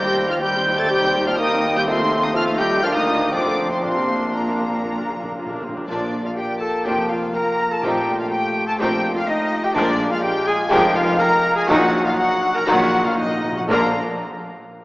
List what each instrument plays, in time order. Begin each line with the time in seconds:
Already playing: cello section D#2, double bass section D#2, french horn section G3, bassoon C4, clarinet G4, flute section D#5, violin section G5 G6
0.05 viola section C4 G4
0.18 viola section G3 D#4
0.29 french horn section F3, viola section C4 G4, clarinet F4, violin section F5 F6
0.41 french horn section G3, viola section G3 D#4, bassoon C4, clarinet G4, flute section G5, violin section G5 G6
0.54 viola section C4 G4
0.67 viola section G3 D#4
0.77 french horn section A3, viola section C4 G4, clarinet A4, violin section A5 A6
0.89 french horn section G3, viola section G3 D#4, clarinet G4, violin section G5 G6
1.03 viola section C4 G4
1.15 viola section G3 D#4
1.26 french horn section F3, viola section C4 G4, clarinet F4, violin section F5 F6
1.38 french horn section D#3, viola section G3 D#4, bassoon A#3, clarinet D#4, violin section D#5 D#6, flute section G5
1.52 viola section C4 G4
1.64 viola section G3 D#4
1.74 french horn section G3, viola section C4 G4, clarinet G4, violin section G5 G6
1.86 french horn section C3, bassoon A3, clarinet C4, viola section C4 F4, violin section C5 C6, flute section F5
2.00 viola section A3 D#4
2.12 viola section C4 F4
2.22 french horn section D#3, viola section A3 D#4, clarinet D#4, violin section D#5 D#6
2.34 french horn section F3, bassoon A3, viola section C4 F4, clarinet F4, flute section D#5, violin section F5 F6
2.49 viola section A3 D#4
2.58 french horn section G3, viola section C4 F4, clarinet G4, violin section G5 G6
2.72 viola section A3 D#4
2.83 cello section D2, double bass section D2, french horn section F3, bassoon A#3, viola section D4 F4, clarinet F4, flute section D5, violin section F5 F6
2.95 french horn section D#3, viola section A#3 D4, clarinet D#4, violin section D#5 D#6
3.08 viola section D4 F4
3.20 viola section A#3 D4
3.31 double bass section F1, cello section F2, french horn section D3, bassoon C4, viola section C4 F4, clarinet D4, violin section D5 D6, flute section F5
3.45 viola section A3 A4
3.58 viola section C4 F4
3.69 french horn section C3, viola section A3 A4, clarinet C4, violin section C5 C6
3.82 double bass section A#1, cello section A#2, timpani A#2, french horn section C3, viola section A#3 F4, clarinet C4, bassoon D4, violin section C5 C6, flute section F5
3.96 timpani A#2, viola section D4 A#4
4.07 timpani A#2, viola section A#3 F4
4.21 timpani A#2, viola section D4 A#4
4.31 timpani A#2, french horn section A#2, viola section A#3 F4, clarinet A#3, violin section A#4
4.35 timpani A#2, violin section A#5
4.46 timpani A#2, viola section D4 A#4
4.53 timpani A#2
4.59 viola section A#3 F4
4.70 timpani A#2, viola section D4 A#4
4.77 timpani A#2
4.84 timpani A#2, viola section A#3 F4
4.92 timpani A#2
4.98 timpani A#2, viola section D4 A#4
5.08 timpani A#2, viola section A#3 F4
5.16 timpani A#2
5.23 timpani A#2, viola section D4 A#4
5.31 timpani A#2
5.36 timpani A#2, viola section A#3 F4
5.46 timpani A#2, viola section D4 A#4
5.53 timpani A#2
5.61 timpani A#2, viola section A#3 F4
5.69 timpani A#2
5.75 timpani A#2, viola section D4 A#4
5.87 double bass section A#1, cello section A#2, viola section F3 A#3, french horn section A#3 F4, clarinet D4, violin section D4 D5, flute section D5
6.23 clarinet F4, flute section F5, violin section F5
6.36 clarinet G4, violin section G5, flute section G5
6.60 clarinet A4, violin section A5, flute section A5
6.85 double bass section F1, cello section F2, viola section F3 A#3, violin section D4 G5, clarinet G4, flute section G5
7.09 clarinet F4, violin section F5, flute section F5
7.34 clarinet A#4, violin section A#5, flute section A#5
7.71 clarinet A4, flute section A5, violin section A5
7.82 double bass section A#1, cello section A#2, timpani A#2, viola section F3 A3, french horn section A3, violin section C4 D#4 G5, clarinet G4, flute section G5
8.18 clarinet F4, flute section F5, violin section F5
8.31 clarinet G4, violin section G5, flute section G5
8.67 clarinet A4, flute section A5, violin section A5
8.78 double bass section A#1, cello section A#2, viola section F3 A3, violin section C4 D#4 G5, clarinet G4, flute section G5
9.15 clarinet F4, flute section F5, violin section F5
9.28 clarinet D#4, flute section D#5, violin section D#5
9.63 clarinet G4, flute section G5, violin section G5
9.74 double bass section A#1, cello section A#2, timpani A#2, viola section F3 G#3, french horn section G#3 F4, violin section A#3 D4 D5, clarinet D4, flute section D5
10.10 clarinet F4, flute section F5, violin section F5
10.22 clarinet G4, flute section G5, violin section G5
10.47 clarinet G#4, violin section G#5, flute section G#5
10.70 double bass section F1, cello section F2, viola section F3 G#3, violin section A#3 D4 G5, clarinet G4, flute section G5
10.95 clarinet F4, flute section F5, violin section F5
11.19 clarinet A#4, flute section A#5, violin section A#5
11.55 clarinet G#4, flute section G#5, violin section G#5
11.68 double bass section A#1, cello section A#2, timpani A#2, viola section D#3 F#3, french horn section F#3 D#4, violin section A#3 D#4 F#5, clarinet F#4, flute section F#5
11.84 timpani A#2
11.91 timpani A#2
11.99 timpani A#2
12.04 timpani A#2, clarinet F4, flute section F5, violin section F5
12.14 timpani A#2, clarinet F#4, violin section F#5
12.18 timpani A#2, flute section F#5
12.29 timpani A#2
12.37 timpani A#2
12.52 timpani A#2, clarinet A#4, flute section A#5
12.56 violin section A#5
12.60 timpani A#2
12.66 double bass section A#1, cello section A#2, timpani A#2, viola section D#3 F#3, violin section A#3 D#4 F#5, clarinet F#4, flute section F#5
12.75 timpani A#2
12.82 timpani A#2
12.90 timpani A#2
12.98 timpani A#2
13.04 timpani A#2, clarinet F4, flute section F5, violin section F5
13.14 timpani A#2, clarinet D#4, flute section D#5
13.18 timpani A#2, violin section D#5
13.28 timpani A#2
13.36 timpani A#2
13.44 timpani A#2
13.52 timpani A#2
13.56 clarinet F#4, flute section F#5, violin section F#5
13.60 timpani A#2
13.69 double bass section A#1, cello section A#2, timpani A#2, viola section D3 A#3, french horn section F3 D4, violin section A#3 F4 A#5, clarinet A#4, flute section F5